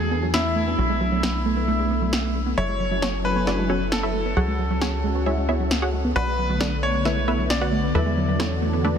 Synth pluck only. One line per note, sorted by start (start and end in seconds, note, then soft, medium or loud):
2.58 2.93 E4 medium
2.58 2.93 A4 medium
2.58 2.93 C#5 medium
2.58 2.93 E5 medium
3.02 3.38 C#4 medium
3.02 3.38 F#4 medium
3.02 3.38 A4 medium
3.02 3.38 C#5 medium
3.47 3.65 D4 medium
3.47 3.65 F#4 medium
3.47 3.65 A4 medium
3.47 3.65 D5 medium
3.70 3.96 C#4 medium
3.70 3.96 F#4 medium
3.70 3.96 A4 medium
3.70 3.96 C#5 medium
4.03 4.30 E4 medium
4.03 4.30 A4 medium
4.03 4.30 C#5 medium
4.03 4.30 E5 medium
4.37 4.72 F#4 medium
4.37 4.72 G#4 medium
4.37 4.72 C#5 medium
4.37 4.72 F#5 medium
4.81 5.17 C#4 medium
4.81 5.17 F#4 medium
4.81 5.17 G#4 medium
4.81 5.17 C#5 medium
5.26 5.44 E4 medium
5.26 5.44 G#4 medium
5.26 5.44 C#5 medium
5.26 5.44 E5 medium
5.49 5.75 E4 medium
5.49 5.75 G#4 medium
5.49 5.75 C#5 medium
5.49 5.75 E5 medium
5.82 6.09 F#4 medium
5.82 6.09 G#4 medium
5.82 6.09 C#5 medium
5.82 6.09 F#5 loud
6.16 6.51 F#4 medium
6.16 6.51 B4 medium
6.16 6.51 D5 medium
6.16 6.51 F#5 medium
6.61 6.96 D4 medium
6.61 6.96 A4 medium
6.61 6.96 B4 medium
6.61 6.96 D5 medium
7.05 7.23 E4 medium
7.05 7.23 A4 medium
7.05 7.23 B4 medium
7.05 7.23 E5 medium
7.28 7.54 E4 medium
7.28 7.54 A4 medium
7.28 7.54 B4 medium
7.28 7.54 E5 medium
7.61 7.88 F#4 medium
7.61 7.88 B4 medium
7.61 7.88 D5 medium
7.61 7.88 F#5 loud
7.95 8.30 E4 medium
7.95 8.30 A4 medium
7.95 8.30 B4 medium
7.95 8.30 E5 loud
8.40 8.75 C#4 medium
8.40 8.75 E4 medium
8.40 8.75 A4 medium
8.40 8.75 C#5 medium
8.84 8.98 D4 medium
8.84 8.98 A4 medium
8.84 8.98 B4 medium
8.84 8.98 D5 medium